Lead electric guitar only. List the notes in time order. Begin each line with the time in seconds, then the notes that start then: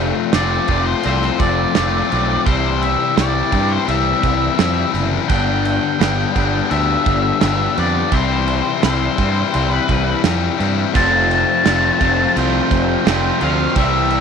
0.34 D5
0.86 C5
1.40 D5
2.45 C5
2.82 E5
3.16 D5
3.70 C5
3.88 E5
5.28 G5
5.65 G5
6.71 E5
7.79 D5
8.13 C5
8.84 C5
9.73 B4
10.96 A5
11.33 A5
12.39 G5
13.43 F5
13.78 E5